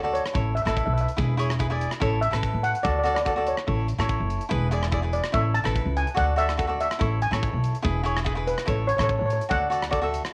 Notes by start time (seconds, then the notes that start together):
Already playing: D2 C#5
0.03 F#4 A4 D5
0.14 C#5, closed hi-hat
0.26 cross-stick, closed hi-hat
0.34 A1 E4 A4 C#5, kick, closed hi-hat
0.55 E5, closed hi-hat
0.62 A1 E4 A4 E5
0.67 B4 E5, cross-stick, closed hi-hat
0.77 E5, kick, closed hi-hat
0.86 B1 E5
0.94 E5
0.98 E5, closed hi-hat
1.08 closed hi-hat
1.17 E1 E4 G#4 B4, kick, closed hi-hat
1.37 E4 G#4 C#5, closed hi-hat
1.50 cross-stick, closed hi-hat
1.59 E4 G#4 B4, kick, closed hi-hat
1.70 E4 G#4 D5
1.81 closed hi-hat
1.91 cross-stick, closed hi-hat
2.00 A1 E4 A4 C#5, kick, closed hi-hat
2.21 E5, closed hi-hat
2.31 A1 E4 A4 B4, cross-stick, closed hi-hat
2.43 kick, closed hi-hat
2.54 A2
2.63 F#5, closed hi-hat
2.75 closed hi-hat
2.83 D2 F#4 A4 D5, kick, closed hi-hat
2.92 D5
2.99 D5
3.03 F#4 A4 D5, closed hi-hat
3.15 D5, cross-stick, closed hi-hat
3.22 F#4 A4 D5, closed hi-hat
3.26 D5, kick
3.36 F#4 A4 D5
3.47 C#5, closed hi-hat
3.57 cross-stick, closed hi-hat
3.67 A1 E4 A4 C#5, kick, closed hi-hat
3.88 closed hi-hat
3.98 A1 E4 A4 C#5, cross-stick, closed hi-hat
4.09 kick, closed hi-hat
4.20 F#1
4.30 closed hi-hat
4.41 closed hi-hat
4.49 E1 E4 G#4 B4, kick, closed hi-hat
4.71 E4 G#4 D5, closed hi-hat
4.83 cross-stick, closed hi-hat
4.91 E4 G#4 D5, kick, closed hi-hat
5.02 E4 G#4 B4
5.13 D5, closed hi-hat
5.24 cross-stick, closed hi-hat
5.32 A1 E4 A4 C#5 E5, kick, closed hi-hat
5.55 A5, closed hi-hat
5.64 A1 E4 A4 B4, cross-stick, closed hi-hat
5.76 kick, closed hi-hat
5.85 C#2
5.97 G#5, closed hi-hat
6.07 closed hi-hat
6.14 D2 F#4 A4 D5 F#5, kick, closed hi-hat
6.36 F#4 A4 D5 E5, closed hi-hat
6.49 cross-stick, closed hi-hat
6.57 F#4 A4 B4, kick, closed hi-hat
6.67 F#4 A4 D5
6.80 E5, closed hi-hat
6.91 cross-stick, closed hi-hat
6.99 A1 E4 A4 C#5, kick, closed hi-hat
7.22 G#5, closed hi-hat
7.31 A1 E4 A4 C#5, cross-stick, closed hi-hat
7.43 kick, closed hi-hat
7.53 B1
7.64 closed hi-hat
7.75 closed hi-hat
7.82 E1 E4 G#4 B4, kick, closed hi-hat
8.03 E4 G#4 C#5, closed hi-hat
8.17 cross-stick, closed hi-hat
8.24 E4 G#4 B4, kick, closed hi-hat
8.35 E4 G#4 B4
8.47 B4, closed hi-hat
8.58 cross-stick, closed hi-hat
8.66 A1 E4 A4 C#5, kick, closed hi-hat
8.87 C#5, closed hi-hat
8.97 A1 E4 A4 C#5, cross-stick, closed hi-hat
9.04 C#5
9.09 C#5, kick, closed hi-hat
9.19 A2 C#5
9.26 C#5
9.30 C#5, closed hi-hat
9.41 closed hi-hat
9.49 D2 F#4 A4 D5 F#5, kick, closed hi-hat
9.70 F#4 A4 D5, closed hi-hat
9.82 cross-stick, closed hi-hat
9.90 F#4 A4 D5, kick, closed hi-hat
10.01 F#4 A4 E5
10.14 closed hi-hat
10.25 cross-stick, closed hi-hat